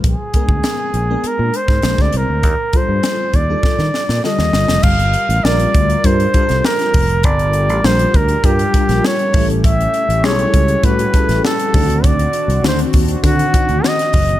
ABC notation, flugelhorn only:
X:1
M:4/4
L:1/16
Q:1/4=100
K:Dphr
V:1 name="Flugelhorn"
_A8 B2 c3 d B2- | B2 c4 d6 e4 | f4 d4 c4 B4 | d4 c2 B2 G4 ^c4 |
=e4 ^c4 =B4 A4 | d4 c2 z2 ^F4 e4 |]